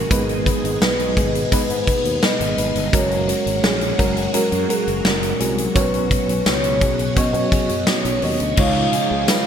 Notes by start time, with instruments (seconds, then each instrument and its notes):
Already playing: fm electric piano G#3 C#4 F#4 A#4, string machine G#3, vibraphone A#4
0.10 fretless electric bass G#1, string machine B2 D#3 D#4 G#4, fm electric piano G#3 B3 D#4 B4, vibraphone G#4, kick, closed hi-hat
0.29 closed hi-hat
0.45 fm electric piano G#3 B3 D#4 B4, kick, closed hi-hat
0.64 fretless electric bass G#1, closed hi-hat
0.81 fretless electric bass B1, fm electric piano G#3 B3 D#4 B4, vibraphone B4, snare
0.99 closed hi-hat
1.17 fretless electric bass G#1, fm electric piano G#3 B3 D#4 G#4, kick, closed hi-hat
1.35 closed hi-hat
1.52 fm electric piano G#3 B3 D#4 B4, vibraphone B4, muted fretless electric bass stroke, kick, closed hi-hat
1.70 fretless electric bass G#2, closed hi-hat
1.87 fm electric piano G#3 B3 D#4 B4, kick, closed hi-hat
2.05 fretless electric bass D#2, closed hi-hat
2.22 fm electric piano G#3 B3 D#4 B4, vibraphone D#5, snare
2.40 fretless electric bass G#1, closed hi-hat
2.57 fretless electric bass G#1, fm electric piano G#3 B3 D#4 B4, closed hi-hat
2.75 fretless electric bass G1, closed hi-hat
2.92 fretless electric bass F#1, string machine F#3 A#3 F#4, fm electric piano G#3 C#4 F#4 A#4, vibraphone C#5, kick, closed hi-hat
3.11 closed hi-hat
3.27 fm electric piano G#3 C#4 F#4 A#4, closed hi-hat
3.46 fretless electric bass G#1, closed hi-hat
3.62 fretless electric bass A#1, fm electric piano G#3 C#4 F#4 G#4, snare
3.81 closed hi-hat
3.98 fretless electric bass F#1, fm electric piano G#3 C#4 F#4 A#4, kick, closed hi-hat
4.17 closed hi-hat
4.33 fm electric piano G#3 C#4 F#4 A#4, vibraphone A#4, muted fretless electric bass stroke, closed hi-hat
4.52 fretless electric bass F#2, closed hi-hat
4.69 fm electric piano G#3 C#4 F#4 A#4, vibraphone G#4, closed hi-hat
4.87 fretless electric bass F#1, closed hi-hat
5.04 fretless electric bass F#1, fm electric piano G#3 C#4 F#4 A#4, vibraphone A#4, snare
5.23 closed hi-hat
5.39 fretless electric bass C2, fm electric piano G#3 C#4 F#4 G#4, closed hi-hat
5.58 closed hi-hat
5.74 fretless electric bass B1, string machine B2 C#4 F#4, fm electric piano B3 C#4 F#4 C#5, vibraphone B4, kick, closed hi-hat
5.94 closed hi-hat
6.11 fm electric piano B3 C#4 F#4 C#5, kick, closed hi-hat
6.28 fretless electric bass B1, closed hi-hat
6.46 fretless electric bass C#2, fm electric piano B3 C#4 F#4 C#5, vibraphone C#5, snare, tambourine
6.64 closed hi-hat
6.81 fretless electric bass B1, fm electric piano B3 C#4 F#4 G#4, kick, closed hi-hat
6.99 closed hi-hat
7.16 fm electric piano B3 C#4 F#4 C#5, vibraphone D#5, muted fretless electric bass stroke, kick, closed hi-hat
7.33 fretless electric bass B2, closed hi-hat
7.51 fm electric piano B3 C#4 F#4 G#4, kick, closed hi-hat
7.69 fretless electric bass F#2, closed hi-hat
7.87 fm electric piano B3 C#4 F#4 D#5, vibraphone C#5, snare, tambourine
8.05 fretless electric bass B1, closed hi-hat
8.22 fretless electric bass D#2, fm electric piano B3 C#4 F#4 C#5, vibraphone D#5, open hi-hat
8.40 fretless electric bass D2, closed hi-hat
8.56 fretless electric bass C#2, overdriven electric guitar C#3 G#3, string machine C#3 F3 G#3 D#4 F4, fm electric piano G#3 C#4 D#4 F4 C#5, analog polysynth D#4 F4 G#4, vibraphone F5, kick, crash
8.61 overdriven electric guitar C#4
8.93 fm electric piano G#3 C#4 D#4 F4 G#4, closed hi-hat
9.11 fretless electric bass C#2
9.28 fm electric piano G#3 C#4 D#4 F4 B4, snare, closed hi-hat, tambourine